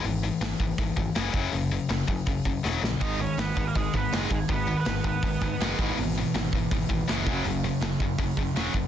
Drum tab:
HH |o-o-o-o-|o-o-o---|o-o-o-o-|o-o-o-o-|
SD |--o---o-|--o---oo|--o---o-|--o---o-|
BD |---ooo-o|---ooo--|o--ooo-o|o--ooo-o|

HH |o-o-o-o-|o-o-o-o-|
SD |--o---o-|--o---o-|
BD |---ooo-o|---ooo-o|